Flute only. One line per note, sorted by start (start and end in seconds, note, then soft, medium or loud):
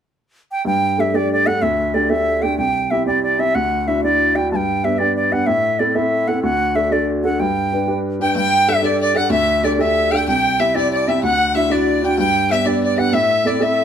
0.52 0.65 G5 medium
0.67 1.02 G5 medium
1.00 1.17 E5 medium
1.15 1.32 D5 medium
1.32 1.48 D5 medium
1.47 1.64 F#5 loud
1.62 1.96 E5 medium
1.94 2.11 D5 medium
2.10 2.44 E5 medium
2.42 2.57 G5 medium
2.58 2.92 G5 loud
2.91 3.06 E5 medium
3.07 3.22 D5 medium
3.23 3.41 D5 medium
3.40 3.56 E5 medium
3.55 3.89 F#5 medium
3.88 4.03 E5 medium
4.04 4.37 D5 medium
4.36 4.51 G5 medium
4.52 4.86 G5 medium
4.52 4.57 A5 medium
4.84 5.00 E5 medium
4.98 5.15 D5 medium
5.16 5.34 D5 medium
5.32 5.48 F#5 medium
5.46 5.81 E5 medium
5.79 5.97 D5 medium
5.95 6.29 E5 medium
6.28 6.43 F#5 medium
6.43 6.77 F#5 medium
6.76 6.94 E5 medium
6.92 7.09 D5 medium
7.24 7.41 F#5 medium
7.40 7.99 G5 medium
8.22 8.36 G5 medium
8.37 8.71 G5 loud
8.69 8.84 E5 medium
8.84 9.00 D5 medium
9.02 9.18 D5 medium
9.17 9.31 F#5 medium
9.32 9.66 E5 medium
9.64 9.82 D5 medium
9.81 10.13 E5 medium
10.11 10.27 G5 medium
10.27 10.61 G5 loud
10.60 10.76 E5 medium
10.75 10.92 D5 loud
10.92 11.09 D5 medium
11.08 11.22 E5 medium
11.23 11.53 F#5 loud
11.57 11.73 E5 medium
11.72 12.04 D5 medium
12.05 12.18 G5 medium
12.18 12.53 G5 loud
12.51 12.68 E5 medium
12.67 12.83 D5 medium
12.85 13.00 D5 medium
12.99 13.16 F#5 medium
13.14 13.48 E5 loud
13.47 13.64 D5 medium
13.63 13.84 E5 medium